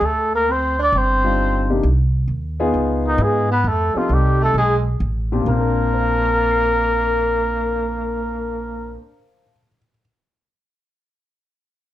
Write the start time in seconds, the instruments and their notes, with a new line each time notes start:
0.01 upright bass D2, tenor saxophone A3
0.05 muted trumpet A4
0.34 tenor saxophone A#3, muted trumpet A#4
0.50 tenor saxophone C4, muted trumpet C5
0.79 tenor saxophone D4, muted trumpet D5
0.92 upright bass G1, tenor saxophone C4
0.98 muted trumpet C5
1.24 grand piano G3 D4 D#4 F4
1.70 grand piano C3 A#3 D4 D#4 G4
1.83 upright bass C2
2.28 upright bass D#2
2.60 grand piano B3 D#4 F4 G#4
2.74 upright bass C#2
3.06 tenor saxophone D#3, muted trumpet D#4
3.18 upright bass G#2, grand piano B3 D#4 F4 G#4
3.23 tenor saxophone G#3, muted trumpet G#4
3.51 tenor saxophone B3, muted trumpet B4
3.64 upright bass F2, muted trumpet A4
3.68 tenor saxophone A3
3.95 tenor saxophone F3, grand piano C4 D#4 G4 A4, muted trumpet F4, muted upright bass stroke
4.09 upright bass C2, tenor saxophone G3
4.14 muted trumpet G4
4.41 tenor saxophone A3, muted trumpet A4
4.54 upright bass B1, tenor saxophone G#3
4.58 muted trumpet G#4
5.00 upright bass A1
5.32 grand piano A#2 C4 D4 F4 G4
5.41 grand piano A#3
5.46 upright bass A#1, tenor saxophone A#3, grand piano C4, muted trumpet A#4
5.54 grand piano D4
5.60 grand piano A#4
5.93 grand piano C5
6.01 grand piano F5
6.09 grand piano A5
6.19 grand piano C6
6.28 grand piano F6
6.39 grand piano A6
6.51 grand piano C7